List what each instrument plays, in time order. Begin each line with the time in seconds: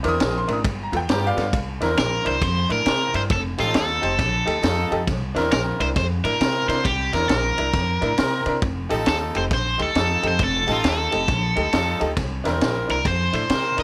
0.03 upright bass E2, horn section C4 E4 A#4, upright piano D4 E4 A#4 D6, ride
0.08 upright piano D#6
0.20 upright bass A#1, snare, ride
0.38 upright piano C6
0.48 upright bass A1, upright piano D4 E4 A#4, ride
0.53 upright piano D#6
0.65 upright bass G1, kick, ride
0.84 upright piano A#5
0.92 upright bass E2, upright piano B3 F4 A4, ride
0.97 upright piano G5
1.08 upright bass G2, horn section B3 F4 G4, upright piano A#5, snare, ride
1.26 upright piano D5 F5
1.36 upright bass G2, upright piano B3 F4 A4, snare, ride
1.53 upright bass C2, kick, ride
1.81 upright bass E2, horn section C4 E4 A#4, upright piano D4 E4 A#4, snare, ride
1.97 upright bass A#1, overdriven electric guitar A#4, snare, ride
2.25 upright bass C2, upright piano D4 E4 A#4, overdriven electric guitar C5, ride
2.41 upright bass F2, overdriven electric guitar C5, kick, ride
2.69 upright bass A2, upright piano D4 E4 A#4, overdriven electric guitar A#4, ride
2.85 upright bass C3, horn section C4 E4 A#4, snare, ride
3.13 upright bass G2, upright piano D4 E4 A#4, overdriven electric guitar C5, ride
3.30 upright bass F1, overdriven electric guitar A4, kick, snare, ride
3.58 upright bass A1, upright piano D#4 G4 A4, horn section D#4 F4 A4, overdriven electric guitar F4, snare, ride
3.74 upright bass D#2, overdriven electric guitar A4, snare, ride
4.01 upright bass F1, upright piano D#4 G4 C5, ride
4.19 upright bass A#1, kick, snare, ride
4.46 upright bass D2, upright piano D#4 G4 A4, ride
4.62 upright bass F2, horn section D#4 F4 A4, snare, ride
4.91 upright bass F2, upright piano D#4 G4 A4, ride
5.07 upright bass C2, kick, snare, ride
5.35 upright bass E2, horn section C4 E4 A#4, upright piano D4 E4 A#4, snare, ride
5.52 upright bass A#1, overdriven electric guitar A#4, snare, ride
5.80 upright bass C2, upright piano D4 E4 A#4, overdriven electric guitar C5, ride
5.96 upright bass F2, overdriven electric guitar C5, kick, snare, ride
6.24 upright bass A2, upright piano D4 E4 A#4, overdriven electric guitar A#4, ride
6.40 upright bass C3, horn section C4 E4 A#4, snare, ride
6.68 upright bass C3, upright piano D4 E4 A#4, overdriven electric guitar C5, snare, ride
6.85 upright bass C2, overdriven electric guitar G4, kick, ride
7.12 upright bass E2, horn section C4 E4 A#4, upright piano D4 E4 A#4, overdriven electric guitar A#4, snare, ride
7.29 upright bass A#1, overdriven electric guitar A#4, snare, ride
7.58 upright bass C2, upright piano D4 E4 A#4, ride
7.73 upright bass F2, kick, snare, ride
8.01 upright bass A2, upright piano D4 E4 A#4, ride
8.17 upright bass C3, horn section C4 E4 A#4, snare, ride
8.46 upright bass C3, upright piano D4 E4 A#4, ride
8.62 upright bass F1, kick, ride
8.89 upright bass A1, upright piano D#4 G4 A4, horn section D#4 F4 A4, ride
9.06 upright bass D#2, overdriven electric guitar A4, snare, ride
9.34 upright bass F1, upright piano D#4 G4 A4, overdriven electric guitar C5, ride
9.51 upright bass A#1, overdriven electric guitar C5, kick, snare, ride
9.78 upright bass D2, upright piano D#4 G4 A4, ride
9.83 overdriven electric guitar A4
9.95 upright bass F2, horn section D#4 F4 A4, snare, ride
10.23 upright bass F2, upright piano D#4 G4 A4, ride
10.28 overdriven electric guitar C5
10.39 upright bass F1, kick, snare, ride
10.44 overdriven electric guitar A4
10.67 upright bass A1, upright piano D#4 G4 A4, horn section D#4 F4 A4, ride
10.72 overdriven electric guitar F4
10.84 upright bass D#2, snare, ride
10.89 overdriven electric guitar A4
11.11 upright bass F1, upright piano D#4 G4 A4, ride
11.28 upright bass A#1, kick, snare, ride
11.56 upright bass D2, upright piano D#4 G4 A4, ride
11.72 upright bass F2, horn section D#4 F4 A4, snare, ride
12.00 upright bass D2, upright piano D#4 G4 A4, ride
12.17 upright bass C2, kick, snare, ride
12.44 upright bass E2, horn section C4 E4 A#4, upright piano D4 E4 A#4, snare, ride
12.61 upright bass A#1, snare, ride
12.88 upright bass C2, upright piano D4 E4 A#4, overdriven electric guitar A#4, ride
13.05 upright bass F2, overdriven electric guitar C5, kick, ride
13.33 upright bass A2, upright piano D4 E4 A4, overdriven electric guitar C5, ride
13.48 upright bass C3, horn section C4 E4 A#4, snare, ride
13.77 upright bass C3, upright piano D4 E4 A#4, snare, ride